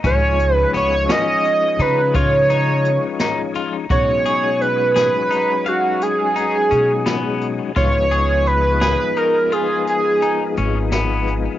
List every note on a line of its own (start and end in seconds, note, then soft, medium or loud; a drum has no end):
0.04 0.63 C#2 medium
0.04 3.86 F3 medium
0.04 3.86 G#3 medium
0.04 3.86 C#4 medium
0.04 0.45 C#4 medium
0.04 3.86 D#4 medium
0.04 0.55 C#5 medium
0.04 kick medium
0.04 closed hi-hat medium
0.39 closed hi-hat medium
0.55 0.71 B4 medium
0.74 1.04 C#2 medium
0.74 0.95 B3 medium
0.74 1.13 C#5 loud
0.74 closed hi-hat medium
1.09 1.50 C#4 medium
1.09 1.83 D#5 loud
1.09 snare loud
1.09 closed hi-hat medium
1.45 closed hi-hat medium
1.79 2.97 C#3 medium
1.79 2.00 D#4 medium
1.79 2.15 B4 medium
1.79 closed hi-hat medium
2.14 2.35 F4 medium
2.14 3.52 C#5 loud
2.14 kick medium
2.14 closed hi-hat medium
2.50 2.91 D#4 medium
2.50 closed hi-hat medium
2.85 closed hi-hat medium
3.20 3.41 D#4 medium
3.20 snare medium
3.20 closed hi-hat medium
3.55 3.76 F4 medium
3.55 closed hi-hat medium
3.90 5.08 B2 medium
3.90 7.72 F#3 medium
3.90 7.72 G#3 soft
3.90 7.72 C#4 medium
3.90 7.73 D#4 medium
3.90 4.11 F#4 medium
3.90 4.63 C#5 loud
3.90 kick medium
3.90 closed hi-hat medium
4.25 4.66 G#4 medium
4.25 closed hi-hat medium
4.61 4.96 B4 loud
4.61 closed hi-hat soft
4.96 5.16 G#4 medium
4.96 5.69 B4 loud
4.96 snare medium
4.96 closed hi-hat medium
5.31 5.51 D#4 medium
5.31 closed hi-hat medium
5.66 6.04 F#4 medium
5.66 6.07 F5 medium
5.66 closed hi-hat soft
6.01 7.42 G#4 loud
6.01 closed hi-hat medium
6.36 6.56 D#4 medium
6.36 closed hi-hat medium
6.71 7.60 B2 medium
6.71 6.91 C#4 medium
6.71 closed hi-hat medium
7.06 7.47 B3 medium
7.06 snare medium
7.06 closed hi-hat medium
7.41 closed hi-hat medium
7.76 8.94 C#2 medium
7.76 11.58 F3 medium
7.76 11.58 G#3 medium
7.76 11.58 B3 medium
7.76 11.58 D#4 medium
7.76 7.97 F4 medium
7.76 8.49 C#5 loud
7.76 kick loud
7.76 closed hi-hat medium
8.11 8.52 G#4 medium
8.11 closed hi-hat medium
8.46 8.82 B4 loud
8.46 closed hi-hat soft
8.81 9.02 G#4 medium
8.81 9.19 B4 loud
8.81 snare medium
8.81 closed hi-hat medium
9.16 9.37 D#4 medium
9.16 9.54 A#4 medium
9.16 closed hi-hat medium
9.52 9.93 F4 medium
9.52 9.88 G#4 medium
9.52 closed hi-hat soft
9.87 10.54 G#4 medium
9.87 closed hi-hat medium
10.22 10.43 D#4 medium
10.22 closed hi-hat medium
10.57 11.46 G#1 medium
10.57 10.78 C#4 medium
10.57 closed hi-hat medium
10.92 11.33 B3 medium
10.92 snare medium
10.92 closed hi-hat medium
11.27 closed hi-hat soft